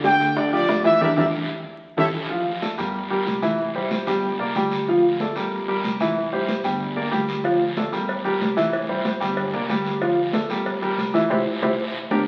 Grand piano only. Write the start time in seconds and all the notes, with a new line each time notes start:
0.04 D3 D4 D5
0.37 D3 D4 D5
0.52 F3 F4 G4
0.84 E3 E4 E5
1.01 D4 E4 G4
1.16 D4 E4 G4
1.97 E4 G4 A4
2.30 F3 F4 F5
2.62 A3 A4 D5
2.78 G3 G4 A#4
3.10 G3 G4 A#4
3.42 E3 E4 E5
3.75 G3 G4 C5
4.07 G3 G4 G5
4.39 A#3 A#4 D5
4.55 G3 G4 G5
4.88 F3 F4 F5
5.21 A3 A4 D5
5.36 G3 G4 A#4
5.68 G3 G4 A#4
6.01 E3 E4 E5
6.32 G3 G4 C5
6.64 G3 G4 G5
6.96 A#3 A#4 D5
7.11 G3 G4 G5
7.44 F3 F4 F5
7.77 A3 A4 D5
7.92 G3 G4 A#4
8.25 G3 G4 A#4
8.57 E3 E4 E5
8.89 G3 G4 C5
9.20 G3 G4 G5
9.54 A#3 A#4 D5
9.70 G3 G4 G5
10.01 F3 F4 F5
10.33 A3 A4 D5
10.50 G3 G4 A#4
10.82 G3 G4 A#4
11.14 E3 E4 E5
11.30 E4 G4 C5
11.62 E4 G4 C5
12.11 D4 G4 A#4